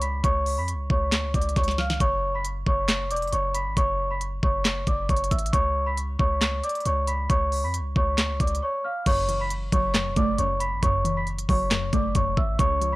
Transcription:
Already playing: 808-style bass C#2
0.01 celesta B5 B6, closed hi-hat
0.24 808-style bass C#2, celesta C#5 C#6, kick, closed hi-hat
0.46 open hi-hat
0.58 808-style bass F2, celesta B5 B6
0.68 closed hi-hat
0.74 808-style bass C#2
0.90 808-style bass C#2, celesta C#5 C#6, kick
1.12 808-style bass D2, snare, clap, closed hi-hat
1.24 808-style bass C#2
1.34 808-style bass C#2, celesta D5 D6, kick, closed hi-hat
1.42 closed hi-hat
1.49 closed hi-hat
1.56 808-style bass C#2, celesta C#5 C#6, kick, snare, closed hi-hat
1.64 closed hi-hat
1.68 snare, closed hi-hat
1.78 celesta F5 F6, snare
1.90 snare
2.00 808-style bass F#1, celesta C#5 C#6, kick, closed hi-hat
2.35 celesta B5 B6
2.45 closed hi-hat
2.66 808-style bass F#1, celesta C#5 C#6, kick
2.88 snare, clap, closed hi-hat
3.11 808-style bass E1, celesta D5 D6, closed hi-hat
3.16 closed hi-hat
3.22 808-style bass F#1, closed hi-hat
3.27 closed hi-hat
3.32 808-style bass F#1, celesta C#5 C#6, closed hi-hat
3.54 celesta B5 B6, closed hi-hat
3.66 808-style bass G#1
3.77 808-style bass F#1, celesta C#5 C#6, kick, closed hi-hat
4.11 celesta B5 B6
4.21 closed hi-hat
4.43 808-style bass F#1, celesta C#5 C#6, kick
4.65 snare, clap, closed hi-hat
4.87 808-style bass F#1, celesta D5 D6, kick, closed hi-hat
5.09 808-style bass F#1, celesta C#5 C#6, kick, closed hi-hat
5.17 closed hi-hat
5.24 closed hi-hat
5.31 808-style bass A1, celesta E5 E6, kick, closed hi-hat
5.39 closed hi-hat
5.46 closed hi-hat
5.53 808-style bass C#2, celesta C#5 C#6, kick, closed hi-hat
5.86 celesta B5 B6
5.98 closed hi-hat
6.19 808-style bass C#2, celesta C#5 C#6, kick
6.41 snare, clap, closed hi-hat
6.64 celesta D5 D6, closed hi-hat
6.69 closed hi-hat
6.75 closed hi-hat
6.80 closed hi-hat
6.86 808-style bass C#2, celesta C#5 C#6, closed hi-hat
7.07 celesta B5 B6, closed hi-hat
7.29 808-style bass C#2, celesta C#5 C#6, kick, closed hi-hat
7.52 open hi-hat
7.63 808-style bass F2, celesta B5 B6
7.74 closed hi-hat
7.80 808-style bass C#2
7.96 808-style bass C#2, celesta C#5 C#6, kick
8.18 808-style bass D2, snare, clap, closed hi-hat
8.30 808-style bass C#2
8.40 808-style bass C#2, celesta D5 D6, kick, closed hi-hat
8.47 closed hi-hat
8.55 closed hi-hat
8.62 celesta C#5 C#6
8.84 celesta F5 F6
9.06 808-style bass F#1, synth pluck F#2, celesta C#5 C#6, kick, closed hi-hat, crash
9.28 synth pluck E3, closed hi-hat
9.41 celesta B5 B6
9.50 closed hi-hat
9.72 808-style bass F#1, synth pluck F#3, celesta C#5 C#6, kick, closed hi-hat
9.94 synth pluck F#2, cross-stick, snare, clap, closed hi-hat
10.06 808-style bass E1
10.16 808-style bass F#1, synth pluck A3, celesta D5 D6, kick, closed hi-hat
10.38 808-style bass F#1, synth pluck F#2, celesta C#5 C#6, closed hi-hat
10.60 celesta B5 B6, closed hi-hat
10.72 808-style bass G#1
10.83 808-style bass F#1, synth pluck F#2, celesta C#5 C#6, kick, closed hi-hat
11.05 synth pluck E3, closed hi-hat
11.16 celesta B5 B6
11.27 closed hi-hat
11.38 closed hi-hat
11.49 808-style bass F#1, synth pluck F#3, celesta C#5 C#6, kick, open hi-hat
11.71 synth pluck F#2, cross-stick, snare, clap, closed hi-hat
11.93 808-style bass F#1, synth pluck A3, celesta D5 D6, kick, closed hi-hat
12.15 808-style bass F#1, synth pluck F#2, celesta C#5 C#6, kick, closed hi-hat
12.37 808-style bass A1, celesta E5 E6, kick
12.59 808-style bass C#2, synth pluck C#3, celesta C#5 C#6, kick, closed hi-hat
12.81 synth pluck F3, closed hi-hat
12.92 celesta B5

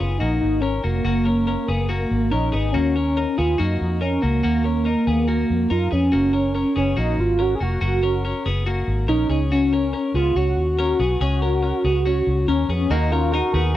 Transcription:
0.00 fingered electric bass F#1, clean electric guitar B3 G#4, soft synth lead F4
0.19 fingered electric bass A#1, clean electric guitar A#3 F#4, soft synth lead D#4
0.41 fingered electric bass G#1, soft synth lead D#4
0.61 soft synth lead C#4, clean electric guitar C#4 A#4
0.84 fingered electric bass F1, clean electric guitar A#3 F#4, soft synth lead A#3
1.05 fingered electric bass F#1, clean electric guitar A#3 F#4
1.25 clean electric guitar C#4 A#4
1.47 clean electric guitar C#4 A#4
1.68 fingered electric bass F#1, clean electric guitar B3 G#4
1.89 clean electric guitar A#3 F#4
2.11 fingered electric bass G#1
2.31 fingered electric bass A#1, clean electric guitar C#4 A#4, soft synth lead D#4
2.52 fingered electric bass G#1, clean electric guitar B3 G#4, soft synth lead D#4
2.72 fingered electric bass D#2, clean electric guitar A#3 F#4, soft synth lead C#4
2.96 clean electric guitar C#4 A#4
3.17 clean electric guitar D#4 A#4
3.38 fingered electric bass D#2, clean electric guitar B3 G#4, soft synth lead F4
3.58 fingered electric bass F#2, clean electric guitar A#3 F#4, soft synth lead D#4
3.81 fingered electric bass F2
4.01 soft synth lead C#4, clean electric guitar D#4 A#4
4.22 fingered electric bass C#2, soft synth lead A#3, clean electric guitar A#3 F#4
4.43 fingered electric bass D#2, clean electric guitar A#3 F#4
4.64 clean electric guitar C#4 A#4
4.85 clean electric guitar D#4 A#4
5.07 fingered electric bass D#2, clean electric guitar B3 G#4
5.28 clean electric guitar A#3 F#4
5.50 fingered electric bass F2
5.70 fingered electric bass F#2, clean electric guitar D#4 A#4, soft synth lead F4
5.91 fingered electric bass F2, clean electric guitar B3 G#4, soft synth lead C#4
6.12 fingered electric bass F#1, clean electric guitar A#3 F#4
6.33 clean electric guitar C#4 A#4
6.55 clean electric guitar C#4 A#4
6.76 fingered electric bass F#1, clean electric guitar B3 G#4, soft synth lead C#4
6.97 fingered electric bass A#1, clean electric guitar A#3 F#4, soft synth lead D#4
7.18 fingered electric bass G#1, soft synth lead F4
7.39 clean electric guitar C#4 A#4, soft synth lead F#4
7.55 soft synth lead G#4
7.60 fingered electric bass F1, clean electric guitar A#3 F#4, soft synth lead F#4
7.81 fingered electric bass F#1, clean electric guitar A#3 F#4
8.03 clean electric guitar C#4 A#4
8.25 clean electric guitar C#4 A#4
8.46 fingered electric bass F#1, clean electric guitar B3 G#4
8.66 clean electric guitar A#3 F#4
8.88 fingered electric bass G#1
9.08 fingered electric bass A#1, clean electric guitar C#4 A#4, soft synth lead D#4
9.29 fingered electric bass C#2, clean electric guitar C#4 G#4, soft synth lead D#4
9.52 soft synth lead C#4, clean electric guitar C#4 F#4
9.73 clean electric guitar C#4 A#4
9.93 clean electric guitar C#4 A#4
10.14 fingered electric bass C#2, clean electric guitar B3 G#4, soft synth lead F4
10.35 fingered electric bass C#2, clean electric guitar C#4 F#4, soft synth lead F#4
10.57 fingered electric bass D#2
10.79 clean electric guitar C#4 A#4
10.99 fingered electric bass B1, clean electric guitar B3 G#4
11.21 fingered electric bass C#2, clean electric guitar C#4 G#4
11.42 clean electric guitar C#4 A#4
11.63 clean electric guitar C#4 A#4
11.84 fingered electric bass C#2, clean electric guitar B3 G#4
12.06 clean electric guitar C#4 F#4
12.27 fingered electric bass C#2
12.48 fingered electric bass D#2, soft synth lead C#4, clean electric guitar C#4 A#4
12.69 fingered electric bass F2, clean electric guitar B3 G#4
12.90 fingered electric bass D#2, clean electric guitar A#3 F#4, upright piano D#4 F#4 A#4, soft synth lead D#4
13.11 clean electric guitar C#4 A#4, upright piano D#4 F#4 A#4, soft synth lead F4
13.32 upright piano D#4 F#4 A#4, clean electric guitar D#4 A#4, soft synth lead F#4
13.53 fingered electric bass D#2, clean electric guitar B3 G#4, upright piano D#4 F#4 A#4

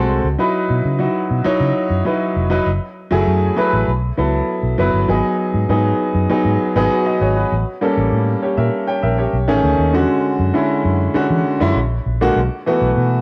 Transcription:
Already playing: grand piano G#3 C4 F#4 A4
0.09 fingered electric bass C2
0.24 fingered electric bass C#2
0.39 grand piano F#3 D#4 E4 B4
0.70 fingered electric bass B2
0.85 fingered electric bass C#3
0.99 grand piano F#3 D#4 E4 F#4
1.31 fingered electric bass B2
1.45 grand piano F#3 D#4 E4 C#5, muted fingered electric bass stroke
1.60 fingered electric bass C#3
1.90 fingered electric bass F#2
2.05 grand piano F#3 D#4 E4 B4
2.36 fingered electric bass F1
2.50 grand piano F#3 D#4 E4 B4
2.66 fingered electric bass F#1
3.11 fingered electric bass F#1, grand piano F#3 A3 E4 G#4
3.27 fingered electric bass F#2
3.57 grand piano F#3 A3 E4 B4
3.73 fingered electric bass A1
3.88 fingered electric bass B1
4.17 fingered electric bass C#2, grand piano F#3 B3 E4 A4
4.63 fingered electric bass B1
4.78 fingered electric bass F#1, grand piano F#3 B3 E4 B4
4.94 fingered electric bass G1
5.08 fingered electric bass G#1, grand piano F#3 B3 D#4 G#4
5.54 fingered electric bass G#2
5.69 fingered electric bass G#2, grand piano F#3 B3 D#4 G#4
6.15 fingered electric bass F#2
6.29 grand piano F#3 B3 D#4 G#4, muted fingered electric bass stroke
6.45 fingered electric bass G#2
6.75 fingered electric bass G#1, grand piano F#3 B3 D#4 G#4
6.91 grand piano F#4 B4
7.06 grand piano G#4 D#5
7.21 fingered electric bass G#1, grand piano G#4 C#5
7.36 grand piano F#4 B4
7.52 fingered electric bass A1
7.81 grand piano G3 A#3 C#4 A4
7.97 fingered electric bass A1
8.12 fingered electric bass A2
8.42 grand piano G4 C#5
8.57 fingered electric bass A#2, grand piano A#4 E5
8.87 grand piano C#5 G5
9.03 fingered electric bass A#1, grand piano A#4 E5
9.18 grand piano G4 C#5
9.33 fingered electric bass B1
9.48 fingered electric bass A1, grand piano D#3 A3 C#4 G#4
9.64 fingered electric bass D2
9.79 fingered electric bass D#2
9.93 fingered electric bass E2, grand piano D3 G#3 C#4 F#4
10.39 fingered electric bass F#2
10.54 grand piano D3 G#3 C#4 E4
10.85 fingered electric bass F#2
11.14 grand piano D3 G#3 C#4 F#4, muted fingered electric bass stroke
11.30 fingered electric bass E3
11.60 fingered electric bass F#2, grand piano D3 G#3 C#4 E4
11.75 fingered electric bass A#1
12.06 fingered electric bass A#1
12.21 grand piano D3 G#3 A#3 F#4
12.36 fingered electric bass B1
12.66 grand piano E3 A3 B3 F#4
12.82 fingered electric bass B1
12.97 fingered electric bass B2

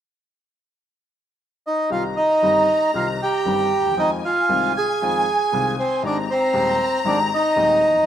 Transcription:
1.67 bandoneon D#4 D#5
1.90 grand piano C2 C3 D#3 G3 C4 G4, bandoneon F4 F5, violin section A#5
2.17 bandoneon D#4 D#5
2.42 grand piano G1 G2 D#3 G3 C4 G4
2.94 grand piano C2 C3 D#3 G3 C4 G4, bandoneon F4 F5
3.23 bandoneon G4 G5
3.45 grand piano G1 G2 D#3 G3 C4 G4
3.80 grand piano D2
3.85 grand piano D#2
3.91 grand piano E2, violin section G5
3.97 grand piano F2 D#3 F3 G#3 C4 F4, bandoneon D#4 D#5, violin section G#5
4.25 bandoneon F4 F5
4.49 grand piano C2 C3 D#3 G#3 C4 F4
4.77 bandoneon G#4 G#5
5.02 grand piano F2 D#3 F3 G#3 C4 F4
5.52 grand piano C2 C3 D#3 G#3 C4 F4
5.79 bandoneon C4 C5
6.03 grand piano G#1 G#2 D#3 G#3 C4 G4, bandoneon D5, violin section A#5
6.07 bandoneon D4
6.31 bandoneon C4 C5
6.53 grand piano D#1 D#2 D#3 G#3 C4 G4
7.05 grand piano G#1 G#2 D#3 G#3 C4 G4, bandoneon D4 D5
7.34 bandoneon D#4 D#5
7.56 grand piano D#1 D#2 D#3 G#3 C4 G4
7.88 grand piano E2
7.95 grand piano F2
8.01 grand piano F#2

